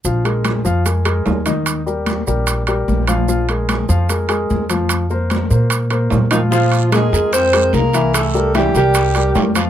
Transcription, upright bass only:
0.05 0.62 A#1 medium
0.65 1.22 F2 medium
1.26 2.22 D#2 medium
2.27 2.84 A#1 medium
2.88 3.83 A#1 medium
3.89 4.46 F2 medium
4.51 5.46 F2 medium
5.51 6.08 A#2 medium
6.12 7.07 A#2 medium
7.12 7.70 F2 medium
7.73 8.69 C2 medium
8.75 9.32 C2 medium
9.35 9.70 F2 medium

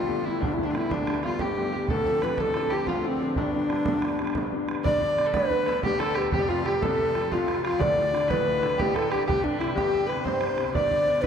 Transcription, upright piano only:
0.00 1.35 G1 medium
0.00 0.24 G2 medium
0.08 0.23 G3 soft
0.08 0.24 A3 soft
0.08 0.24 B3 medium
0.24 0.51 G3 soft
0.24 0.51 A3 soft
0.24 0.51 B3 soft
0.41 1.85 D1 medium
0.41 0.73 D2 medium
0.57 0.72 G3 medium
0.57 0.73 A3 soft
0.57 0.73 B3 medium
0.73 1.00 G3 medium
0.73 1.00 A3 medium
0.73 1.00 B3 medium
0.91 1.23 D2 medium
1.07 1.23 G3 medium
1.07 1.23 A3 soft
1.07 1.24 B3 medium
1.24 1.50 G3 medium
1.24 1.50 A3 soft
1.24 1.51 B3 medium
1.41 1.86 G1 medium
1.41 1.72 G2 medium
1.57 1.72 G3 medium
1.57 1.72 A3 soft
1.57 1.73 B3 medium
1.73 1.86 G3 soft
1.73 1.86 A3 soft
1.73 1.87 B3 medium
1.90 2.86 D1 medium
1.90 2.22 D2 medium
2.06 2.21 F3 medium
2.06 2.22 C4 soft
2.06 2.22 D4 medium
2.23 2.49 F3 medium
2.23 2.49 C4 soft
2.23 2.49 D4 medium
2.40 2.71 A1 medium
2.56 2.70 F3 medium
2.56 2.70 C4 soft
2.56 2.70 D4 medium
2.71 2.97 F3 medium
2.71 2.98 C4 soft
2.71 2.98 D4 medium
2.88 3.34 D1 medium
2.88 3.20 D2 medium
3.04 3.19 F3 medium
3.04 3.20 C4 soft
3.04 3.20 D4 medium
3.21 3.34 F3 medium
3.21 3.34 C4 soft
3.21 3.34 D4 medium
3.37 4.34 G1 medium
3.37 3.69 G2 medium
3.54 3.68 G3 medium
3.54 3.69 B3 soft
3.54 3.68 D4 medium
3.69 3.96 G3 soft
3.69 3.96 B3 soft
3.69 3.96 D4 medium
3.87 4.18 D2 medium
4.03 4.18 G3 soft
4.03 4.18 B3 soft
4.03 4.19 D4 medium
4.20 4.46 G3 medium
4.20 4.46 B3 soft
4.20 4.46 D4 medium
4.36 4.81 G1 medium
4.36 4.67 G2 medium
4.52 4.66 G3 medium
4.52 4.66 B3 soft
4.52 4.67 D4 medium
4.67 4.81 G3 soft
4.67 4.81 B3 soft
4.67 4.81 D4 soft
4.85 6.29 G1 medium
4.85 6.29 G2 medium
5.01 5.17 D3 medium
5.18 5.33 B3 medium
5.34 5.82 D2 medium
5.34 5.49 D3 medium
5.51 5.66 D3 medium
5.68 5.83 B3 medium
5.83 6.29 D2 medium
5.83 5.98 D3 medium
6.00 6.16 D3 medium
6.16 6.32 B3 medium
6.32 7.76 F1 medium
6.32 7.75 F2 medium
6.49 6.65 C3 medium
6.66 6.81 F3 medium
6.82 7.30 C2 medium
6.82 6.97 C3 medium
6.98 7.14 C3 medium
7.15 7.31 F3 medium
7.31 7.77 C2 medium
7.31 7.46 C3 medium
7.48 7.63 C3 medium
7.64 7.79 F3 medium
7.80 9.23 D1 medium
7.80 9.23 D2 medium
7.97 8.12 A2 medium
8.13 8.29 D3 medium
8.30 8.77 A1 medium
8.30 8.44 A2 medium
8.45 8.61 A2 medium
8.63 8.78 D3 medium
8.79 9.24 A1 medium
8.79 8.93 A2 medium
8.94 9.10 A2 medium
9.11 9.27 D3 medium
9.28 10.71 C2 medium
9.44 9.60 G2 medium
9.60 9.76 C3 medium
9.76 10.24 G1 medium
9.76 9.90 G2 medium
9.91 10.08 G2 medium
10.09 10.25 C3 medium
10.26 10.71 G1 medium
10.26 10.40 G2 medium
10.42 10.58 G2 medium
10.58 10.74 C3 medium
10.74 11.27 G1 medium
10.74 11.27 G2 medium
10.91 11.07 D3 medium
11.07 11.23 B3 medium
11.24 11.27 D2 medium
11.24 11.27 D3 medium

